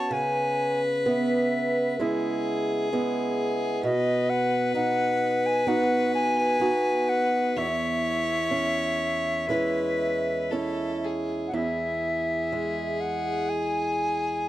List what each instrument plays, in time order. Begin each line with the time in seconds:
Already playing: steel-string acoustic guitar B2 B3 C#4 F#4, flute A5
0.11 steel-string acoustic guitar C#3, fiddle B4, flute G#5
1.06 steel-string acoustic guitar B3, flute E5
2.00 steel-string acoustic guitar G#3 B3 E4, fiddle G#4
2.93 steel-string acoustic guitar G#3 B3 E4
3.82 steel-string acoustic guitar B2, fiddle B4, flute D#5
4.30 flute F#5
4.75 steel-string acoustic guitar D#4, flute F#5
5.46 flute G#5
5.67 steel-string acoustic guitar B3 D#4 F#4, flute F#5
6.15 flute G#5
6.60 steel-string acoustic guitar B3 D#4 F#4
7.09 flute F#5
7.57 steel-string acoustic guitar E2, fiddle C#5, flute E5
8.51 steel-string acoustic guitar C#4
9.49 steel-string acoustic guitar G#3 C#4 E4, fiddle B4
10.51 steel-string acoustic guitar C#4 E4, fiddle A4
11.04 fiddle G#4
11.48 flute F#5
11.54 steel-string acoustic guitar E2 E4, fiddle G#4, flute E5
12.52 steel-string acoustic guitar G#3
13.01 flute F#5
13.49 flute G#5